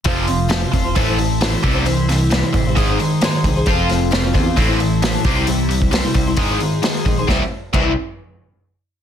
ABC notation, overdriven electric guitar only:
X:1
M:4/4
L:1/8
Q:1/4=133
K:C
V:1 name="Overdriven electric guitar" clef=bass
[F,,C,F,] [F,,C,] [F,,C,] [F,,C,] [A,,E,A,] [A,,E,] [A,,E,] [C,E,G,] | [C,E,] [C,E,] [C,E,] [C,E,] [_A,,_E,_A,] [A,,E,] [A,,E,] [A,,E,] | [F,CF] [F,C] [F,C] [F,C] [A,,E,C] [A,,E,] [A,,E,] [C,G,C] | [C,G,] [C,G,] [C,G,] [C,G,] [_A,,_E,_A,] [A,,E,] [A,,E,] [A,,E,] |
[C,E,G,CE] z [C,E,G,CE] z4 z |]